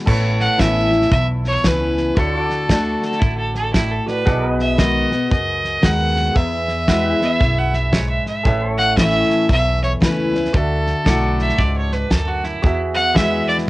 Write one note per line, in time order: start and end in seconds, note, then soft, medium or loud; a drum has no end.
0.05 0.45 A1 medium
0.05 1.07 A2 medium
0.05 2.15 E4 medium
0.05 2.12 A4 medium
0.05 2.15 A4 medium
0.05 2.13 B4 medium
0.05 2.15 C#5 medium
0.05 kick loud
0.05 snare soft
0.05 crash loud
0.10 2.14 C#5 medium
0.40 0.61 F#5 loud
0.40 snare soft
0.58 1.04 A1 medium
0.58 0.90 E3 medium
0.58 0.90 B3 medium
0.58 0.90 C#4 medium
0.58 0.90 E4 medium
0.58 1.12 E5 loud
0.58 kick medium
0.58 snare loud
0.58 hi-hat pedal medium
0.91 1.12 C#4 soft
0.91 1.10 E4 medium
0.91 snare soft
1.02 snare soft
1.11 1.56 B1 medium
1.11 1.27 E5 loud
1.11 kick loud
1.11 snare soft
1.44 1.69 C#5 loud
1.44 snare soft
1.63 2.09 C#2 medium
1.63 2.14 E3 medium
1.63 2.15 B3 medium
1.63 2.15 C#4 medium
1.63 2.15 E4 medium
1.63 2.20 B4 medium
1.63 kick medium
1.63 snare loud
1.63 hi-hat pedal medium
1.97 snare soft
2.15 2.93 D2 medium
2.15 2.68 D3 medium
2.15 2.42 E4 medium
2.15 4.02 F#4 medium
2.15 4.03 A4 medium
2.15 3.22 A4 medium
2.15 4.25 A4 medium
2.15 kick loud
2.15 snare soft
2.19 2.39 C#5 medium
2.19 4.04 D5 medium
2.39 4.24 F#4 medium
2.39 4.25 D5 medium
2.50 snare soft
2.69 3.20 D3 medium
2.69 3.20 A3 medium
2.69 3.20 D4 medium
2.69 3.21 F#4 medium
2.69 kick medium
2.69 snare loud
2.69 hi-hat pedal medium
3.02 3.21 A4 medium
3.02 snare soft
3.12 snare soft
3.20 3.97 A1 medium
3.20 3.72 D3 medium
3.20 3.37 E4 medium
3.20 kick loud
3.20 snare soft
3.38 3.55 A4 medium
3.55 3.73 A4 medium
3.55 snare soft
3.73 4.25 A2 medium
3.73 3.93 E4 medium
3.73 kick medium
3.73 snare loud
3.73 hi-hat pedal medium
3.91 4.08 A4 medium
4.06 4.26 F#4 medium
4.06 4.26 A4 medium
4.06 4.42 B4 medium
4.06 4.27 D5 medium
4.06 snare soft
4.25 5.03 B1 medium
4.25 5.27 B2 loud
4.25 6.33 F#4 medium
4.25 6.31 G#4 medium
4.25 4.52 A4 medium
4.25 6.32 B4 medium
4.25 4.48 D5 medium
4.25 kick loud
4.25 snare soft
4.29 6.33 D#5 medium
4.48 6.34 D#5 medium
4.52 6.34 B4 medium
4.59 4.81 E5 medium
4.59 snare soft
4.77 5.09 D#3 medium
4.77 5.10 G#3 medium
4.77 5.10 B3 medium
4.77 5.10 F#4 loud
4.77 5.31 D#5 medium
4.77 kick medium
4.77 snare loud
4.77 hi-hat pedal medium
5.11 5.31 B3 soft
5.11 5.30 F#4 medium
5.11 snare soft
5.30 5.75 C#2 medium
5.30 6.31 F#2 medium
5.30 5.86 D#5 medium
5.30 kick loud
5.30 snare soft
5.64 snare soft
5.81 6.28 D#2 medium
5.81 6.33 D#3 medium
5.81 6.33 G#3 medium
5.81 6.34 B3 medium
5.81 6.34 F#4 medium
5.81 6.38 F#5 loud
5.81 kick medium
5.81 snare loud
5.81 hi-hat pedal medium
6.16 snare soft
6.34 7.36 E2 loud
6.34 7.12 E2 loud
6.34 8.40 G#4 medium
6.34 8.41 B4 medium
6.34 7.93 E5 medium
6.34 8.42 E5 medium
6.34 kick loud
6.34 snare soft
6.68 snare soft
6.88 7.19 E3 medium
6.88 7.19 G#3 medium
6.88 7.20 B3 medium
6.88 7.19 E4 medium
6.88 7.14 F#4 medium
6.88 8.44 B4 medium
6.88 8.45 E5 medium
6.88 kick medium
6.88 snare loud
6.88 hi-hat pedal medium
7.14 8.44 G#4 medium
7.21 7.40 B3 soft
7.21 7.39 E4 medium
7.21 7.60 E5 loud
7.21 snare soft
7.40 8.16 B1 medium
7.40 7.90 F#2 medium
7.40 kick loud
7.40 snare soft
7.59 7.76 F#5 medium
7.74 7.95 E5 medium
7.74 snare soft
7.92 8.43 G#2 medium
7.92 8.09 C#5 medium
7.92 kick medium
7.92 snare loud
7.92 hi-hat pedal medium
8.10 8.27 E5 medium
8.26 8.60 E5 medium
8.26 snare soft
8.43 9.21 A1 medium
8.43 9.46 A2 loud
8.43 8.67 G#4 medium
8.43 10.49 A4 medium
8.43 10.50 C#5 medium
8.43 kick loud
8.43 snare soft
8.48 8.73 B4 medium
8.48 10.51 E5 medium
8.48 10.53 E5 medium
8.67 10.53 A4 medium
8.73 10.53 C#5 medium
8.78 8.96 F#5 loud
8.78 snare soft
8.97 9.47 E3 medium
8.97 9.48 A3 medium
8.97 9.48 C#4 medium
8.97 9.48 E4 medium
8.97 9.46 E5 loud
8.97 kick medium
8.97 snare loud
8.97 hi-hat pedal medium
9.30 snare soft
9.49 9.94 B1 medium
9.49 10.50 E2 medium
9.49 9.81 E5 medium
9.49 kick loud
9.49 snare soft
9.83 9.92 C#5 medium
9.83 snare soft
10.00 10.46 C#2 medium
10.00 10.32 E3 medium
10.00 10.33 A3 medium
10.00 10.33 C#4 medium
10.00 10.32 E4 medium
10.00 10.57 B4 medium
10.00 kick medium
10.00 snare loud
10.00 hi-hat pedal medium
10.33 10.54 C#4 soft
10.33 10.53 E4 medium
10.33 snare soft
10.45 snare soft
10.53 10.92 D2 medium
10.53 11.54 D3 medium
10.53 12.59 F#4 medium
10.53 11.59 A4 medium
10.53 12.59 D5 medium
10.53 12.61 E5 medium
10.53 kick loud
10.53 snare soft
10.87 snare soft
11.05 11.51 B1 medium
11.05 11.56 F#3 medium
11.05 11.57 A3 medium
11.05 11.57 E4 medium
11.05 11.57 F#4 medium
11.05 12.62 A4 medium
11.05 12.62 D5 medium
11.05 12.62 F#5 medium
11.05 kick medium
11.05 snare loud
11.05 hi-hat pedal medium
11.39 11.60 E5 medium
11.39 snare soft
11.49 snare soft
11.58 12.03 C#2 medium
11.58 12.09 G#2 medium
11.58 11.76 D5 medium
11.58 kick loud
11.58 snare soft
11.78 11.95 C#5 medium
11.92 12.13 B4 medium
11.92 snare soft
12.10 12.55 D2 medium
12.10 12.61 F#2 medium
12.10 12.29 A4 medium
12.10 kick medium
12.10 snare loud
12.10 hi-hat pedal medium
12.28 12.46 F#4 medium
12.44 12.78 E4 medium
12.44 snare soft
12.62 13.64 E2 medium
12.62 13.39 E2 medium
12.62 13.70 F#4 medium
12.62 13.70 G#4 medium
12.62 kick loud
12.62 snare soft
12.67 13.70 E5 medium
12.95 13.17 F#5 loud
12.95 snare soft
13.14 13.65 E3 medium
13.14 13.66 G#3 medium
13.14 13.66 B3 medium
13.14 13.66 F#4 medium
13.14 13.70 G#4 medium
13.14 13.70 B4 medium
13.14 13.48 E5 loud
13.14 13.70 E5 medium
13.14 kick medium
13.14 snare loud
13.14 hi-hat pedal medium
13.48 13.57 D5 loud
13.48 snare soft
13.58 snare soft